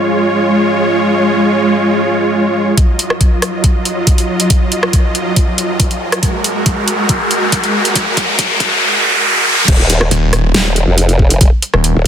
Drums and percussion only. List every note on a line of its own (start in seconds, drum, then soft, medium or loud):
2.77 kick loud
2.77 closed hi-hat medium
2.99 closed hi-hat medium
3.10 cross-stick medium
3.21 kick loud
3.21 closed hi-hat medium
3.42 cross-stick medium
3.42 closed hi-hat medium
3.64 kick medium
3.64 closed hi-hat medium
3.85 closed hi-hat medium
4.07 kick medium
4.07 closed hi-hat medium
4.18 closed hi-hat soft
4.40 closed hi-hat medium
4.50 kick loud
4.50 closed hi-hat medium
4.72 closed hi-hat medium
4.83 cross-stick medium
4.93 kick loud
4.93 closed hi-hat medium
5.15 closed hi-hat medium
5.36 kick loud
5.36 closed hi-hat medium
5.58 closed hi-hat medium
5.80 kick medium
5.80 closed hi-hat medium
5.91 closed hi-hat soft
6.12 cross-stick medium
6.12 closed hi-hat medium
6.23 kick loud
6.23 closed hi-hat medium
6.44 closed hi-hat medium
6.66 kick loud
6.66 closed hi-hat medium
6.88 closed hi-hat medium
7.09 kick loud
7.09 closed hi-hat medium
7.31 closed hi-hat medium
7.52 kick loud
7.52 closed hi-hat medium
7.64 closed hi-hat soft
7.85 closed hi-hat medium
7.96 kick loud
7.96 closed hi-hat medium
8.17 kick loud
8.17 closed hi-hat medium
8.39 kick loud
8.39 closed hi-hat medium
8.60 kick loud
8.60 closed hi-hat medium
9.68 kick loud
9.68 closed hi-hat medium
9.68 crash loud
9.90 closed hi-hat medium
10.01 cross-stick medium
10.11 closed hi-hat medium
10.33 cross-stick medium
10.33 closed hi-hat medium
10.54 snare loud
10.54 closed hi-hat medium
10.76 closed hi-hat medium
10.98 closed hi-hat medium
11.09 closed hi-hat soft
11.19 kick medium
11.30 closed hi-hat medium
11.41 kick loud
11.41 closed hi-hat medium
11.62 closed hi-hat medium
11.74 cross-stick medium
11.84 closed hi-hat medium